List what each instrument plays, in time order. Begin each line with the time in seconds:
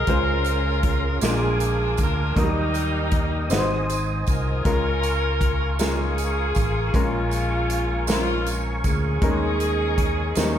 Already playing: saxophone section F4 A#4, tonewheel organ G#4 C6
0.07 fingered electric bass C#2, grand piano C#3 G#3 C#4 F4 C5, tonewheel organ C#4 F5, kick, closed hi-hat
0.44 closed hi-hat, tambourine
0.83 kick, closed hi-hat
1.21 fingered electric bass A#1, grand piano A#2 G#3 C#4 F4 A#4, saxophone section D4 F4 G#4, tonewheel organ A#4 G#5 D6, snare, closed hi-hat, tambourine
1.28 grand piano D4
1.60 closed hi-hat, tambourine
1.97 fingered electric bass D2, saxophone section A#4, kick, closed hi-hat, tambourine
2.36 fingered electric bass D#2, grand piano D#3 F#3 A#3 D#4 A#4, saxophone section G3 A#3 D#4, tonewheel organ D#5 G5 D#6, kick, closed hi-hat
2.42 grand piano G3
2.74 closed hi-hat, tambourine
3.11 kick, closed hi-hat
3.50 fingered electric bass G#1, grand piano G#2 C4 D#4 F#4 B4, tonewheel organ C5 D#5 G#5 D#6, snare, closed hi-hat, tambourine
3.58 grand piano C5
3.89 closed hi-hat, tambourine
4.27 fingered electric bass C2, saxophone section F4 A#4, kick, closed hi-hat, tambourine
4.64 fingered electric bass C#2, grand piano C#3 G#3 C#4 F4 A#4, tonewheel organ A#4 F5 C#6, kick, closed hi-hat
5.03 closed hi-hat, tambourine
5.41 kick, closed hi-hat
5.79 grand piano G#3 C#4 F4 A#4, saxophone section F4 G#4, snare, closed hi-hat, tambourine
6.18 closed hi-hat, tambourine
6.55 fingered electric bass A1, kick, closed hi-hat, tambourine
6.93 fingered electric bass A#1, grand piano A#2 G#3 C#4 F4 A#4, saxophone section G#3 C#4 F4, tonewheel organ C#6, kick, closed hi-hat
7.31 closed hi-hat, tambourine
7.70 closed hi-hat
8.07 grand piano G#3 C4 F4 A#4, saxophone section F4, snare, closed hi-hat, tambourine
8.15 grand piano C#4
8.46 closed hi-hat, tambourine
8.84 fingered electric bass D2, saxophone section C#4 G#4, kick, closed hi-hat, tambourine
9.21 fingered electric bass D#2, grand piano D#3 G3 C#4 D#4 A#4, tonewheel organ A#4 D#5, kick, closed hi-hat
9.28 grand piano G#3
9.60 closed hi-hat, tambourine
9.98 kick, closed hi-hat
10.35 fingered electric bass D#2, grand piano D#3 F3 C#4 D#4 A#4, saxophone section A#3 C#4 G4, snare, closed hi-hat, tambourine
10.43 grand piano G3